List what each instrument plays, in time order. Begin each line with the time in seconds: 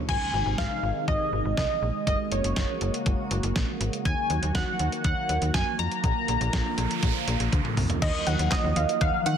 0.09 fm bass G#1, analog synth pad C3 D#3 G#3 D#4, analog polysynth G#5, kick, crash
0.33 fm bass G#1
0.46 fm bass G#1
0.58 fm bass G#1, analog polysynth F5, kick, snare
0.83 fm bass G#1
1.08 fm bass G#1, analog polysynth D#5, kick
1.33 fm bass G#1
1.45 fm bass G#1
1.57 fm bass C2, analog polysynth D#5, kick, snare
1.82 fm bass A#1
2.07 fm bass F#1, analog synth pad C#3 A#3 F#4, analog polysynth D#5, kick, closed hi-hat
2.32 fm bass F#1, analog polysynth C#5, closed hi-hat
2.44 fm bass F#1, closed hi-hat
2.56 fm bass F#1, kick, snare, closed hi-hat
2.81 fm bass F#1, closed hi-hat
2.94 closed hi-hat
3.06 fm bass F#1, kick, closed hi-hat
3.31 fm bass F#1, closed hi-hat
3.43 fm bass F#1, closed hi-hat
3.56 fm bass A#1, kick, snare, closed hi-hat
3.81 fm bass G#1, closed hi-hat
3.93 closed hi-hat
4.05 fm bass D#2, analog synth pad D#3 F#3 A#3 F#4, analog polysynth G#5, kick, closed hi-hat
4.30 fm bass D#2, closed hi-hat
4.43 fm bass D#2, closed hi-hat
4.55 fm bass D#2, analog polysynth F#5, kick, snare, closed hi-hat
4.79 fm bass D#2, closed hi-hat
4.92 closed hi-hat
5.04 fm bass D#2, analog polysynth F#5, kick, closed hi-hat
5.29 fm bass D#2, closed hi-hat
5.42 fm bass D#2, closed hi-hat
5.54 fm bass F#2, analog polysynth G#5, kick, snare, closed hi-hat
5.79 fm bass F2, analog polysynth A#5, closed hi-hat
5.92 closed hi-hat
6.04 fm bass A#1, analog synth pad D3 F3 F4, kick, closed hi-hat, noise sweep
6.28 fm bass A#1, closed hi-hat
6.41 fm bass A#1, closed hi-hat
6.53 fm bass A#1, kick, snare, closed hi-hat
6.78 fm bass A#1, closed hi-hat
6.91 closed hi-hat
7.03 fm bass A#1, kick, closed hi-hat
7.28 fm bass A#1, closed hi-hat
7.40 fm bass A#1, closed hi-hat
7.52 fm bass D2, kick, closed hi-hat, high tom
7.65 mid tom
7.77 fm bass C2, mid tom, open hi-hat
7.90 closed hi-hat, floor tom
8.02 fm bass D#2, analog synth pad D#3 F3 F#3 A#3, synth pluck D#5, kick, closed hi-hat, crash
8.27 fm bass D#2, synth pluck F#5, closed hi-hat
8.39 fm bass D#2, closed hi-hat
8.51 analog polysynth D#5, kick, snare, clap, closed hi-hat
8.64 fm bass D#2
8.76 fm bass D#2, synth pluck F5, closed hi-hat
8.89 closed hi-hat
9.01 fm bass D#2, analog polysynth F5, synth pluck F#5, kick, closed hi-hat
9.26 fm bass D#3, analog polysynth F#5, closed hi-hat